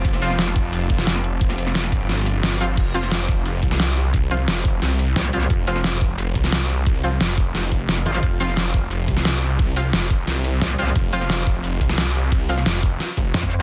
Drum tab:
CC |----------------|----------------|x---------------|----------------|
HH |x-x-x-x-x-x-x-x-|x-x-x-x-x-x-x-x-|x-x-x-x-x-x-x-x-|x-x-x-x-x-x-x-x-|
SD |-o-ooo-----ooo--|-o-ooo--o---o---|---oo------oo---|----o---o---oo-o|
BD |o-----o---o-----|o-----o---------|o-----o---o-----|o-----o---------|

CC |----------------|----------------|----------------|----------------|
HH |x-x-x-x-x-x-x-x-|x-x-x-x-x-x-x-x-|x-x-x-x-x-x-x-x-|x-x-x-x-x-x-x-x-|
SD |---oo------oo---|----o---o---oo-o|---oo------oo---|----o---o---oo-o|
BD |o-----o---o-----|o-----o---o-----|o-----o---o-----|o-----o---------|

CC |----------------|----------------|
HH |x-x-x-x-x-x-x-x-|x-x-x-x-x-x-x-x-|
SD |---oo------oo---|---oo---o---oo--|
BD |o-----o---o-----|o-----o---o--o--|